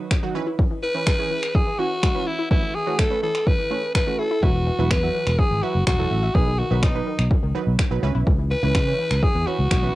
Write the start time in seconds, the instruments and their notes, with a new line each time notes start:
0.11 synth arpeggio sound F#3, finger snap, kick
0.23 synth arpeggio sound D#3, synth pluck F#3 D#4 F#4
0.35 synth pluck E3 C#4 B4, synth arpeggio sound E4
0.47 synth arpeggio sound E4
0.59 synth arpeggio sound E3, kick
0.71 synth arpeggio sound E3
0.83 synth arpeggio sound E3, alto saxophone B4
0.95 synth pluck E3 C#4 B4, synth arpeggio sound E3
1.07 synth arpeggio sound G#3, finger snap, kick
1.19 synth pluck E3 C#4 G#4
1.31 synth arpeggio sound E3
1.43 finger snap
1.55 synth arpeggio sound E3, alto saxophone G#4, kick
1.67 synth arpeggio sound E3
1.79 synth pluck E3 C#4 F#4, synth arpeggio sound E3, alto saxophone F#4
2.03 synth arpeggio sound G#3, finger snap, kick
2.15 synth pluck E3 C#4 B4, synth arpeggio sound E3
2.27 synth arpeggio sound E4, alto saxophone E4
2.39 synth arpeggio sound E4
2.51 synth arpeggio sound E3, synth pluck A3 C#4 B4, alto saxophone E4, kick
2.63 synth arpeggio sound E3
2.75 synth arpeggio sound E3, alto saxophone G#4
2.87 synth arpeggio sound E3, synth pluck A3 C#4 F#4
2.99 synth arpeggio sound A3, alto saxophone A4, finger snap, kick
3.11 synth pluck A3 C#4 B4
3.23 synth arpeggio sound E3, alto saxophone A4
3.35 finger snap
3.47 synth arpeggio sound E3, alto saxophone B4, kick
3.59 synth arpeggio sound E3
3.71 synth arpeggio sound E3, synth pluck A3 C#4 B4
3.95 synth arpeggio sound A3, alto saxophone B4, finger snap, kick
4.07 synth arpeggio sound E3, synth pluck A3 C#4 F#4
4.19 synth arpeggio sound E4, alto saxophone A4
4.31 synth arpeggio sound E4
4.43 fingered electric bass E1, synth arpeggio sound E3, synth pluck F#3 E4 B4, alto saxophone F#4, kick
4.55 synth arpeggio sound E3
4.67 synth arpeggio sound E3
4.79 fingered electric bass E1, synth arpeggio sound E3, synth pluck F#3 E4 B4
4.91 fingered electric bass E2, synth arpeggio sound F#3, alto saxophone B4, finger snap, kick
5.03 synth pluck F#3 E4 F#4
5.15 synth arpeggio sound E3
5.27 fingered electric bass E1, finger snap
5.39 synth arpeggio sound E3, alto saxophone G#4, kick
5.51 fingered electric bass G#1, synth arpeggio sound E3
5.63 synth arpeggio sound E3, synth pluck F#3 E4 B4, alto saxophone F#4
5.75 fingered electric bass F#1
5.87 fingered electric bass E1, synth arpeggio sound F#3, alto saxophone F#4, finger snap, kick
5.99 synth arpeggio sound E3, synth pluck F#3 E4 A4
6.11 fingered electric bass A1, synth arpeggio sound E5
6.23 synth arpeggio sound E5
6.35 fingered electric bass B1, synth arpeggio sound D#3, synth pluck F#3 D#4 B4, alto saxophone G#4, kick
6.47 synth arpeggio sound D#3
6.59 synth arpeggio sound D#3, alto saxophone F#4
6.71 fingered electric bass B1, synth arpeggio sound D#3, synth pluck F#3 D#4 B4
6.83 fingered electric bass B2, synth arpeggio sound F#3, alto saxophone D#4, finger snap, kick
6.95 synth pluck F#3 D#4 B4
7.07 synth arpeggio sound D#3
7.19 fingered electric bass B1, finger snap
7.31 synth arpeggio sound D#3, kick
7.43 fingered electric bass C#2, synth arpeggio sound D#3
7.55 synth arpeggio sound D#3, synth pluck F#3 D#4 B4
7.67 fingered electric bass B1
7.79 synth arpeggio sound F#3, finger snap, kick
7.91 fingered electric bass B1, synth arpeggio sound D#3, synth pluck F#3 D#4 B4
8.03 fingered electric bass C#2, synth pluck E3 C#4 B4, synth arpeggio sound E4
8.15 fingered electric bass B1, synth arpeggio sound E4
8.27 fingered electric bass C#2, synth arpeggio sound E3, kick
8.39 synth arpeggio sound E3
8.51 synth arpeggio sound E3, alto saxophone B4
8.63 fingered electric bass C#2, synth pluck E3 C#4 B4, synth arpeggio sound E3
8.75 fingered electric bass C#3, synth arpeggio sound G#3, finger snap, kick
8.87 synth pluck E3 C#4 B4
8.99 synth arpeggio sound E3
9.11 fingered electric bass C#2, finger snap
9.23 synth arpeggio sound E3, alto saxophone G#4, kick
9.35 fingered electric bass E2, synth arpeggio sound E3
9.47 synth pluck E3 C#4 B4, synth arpeggio sound E3, alto saxophone F#4
9.59 fingered electric bass C#2
9.71 fingered electric bass B1, synth arpeggio sound G#3, finger snap, kick
9.83 synth pluck E3 C#4 B4, synth arpeggio sound E3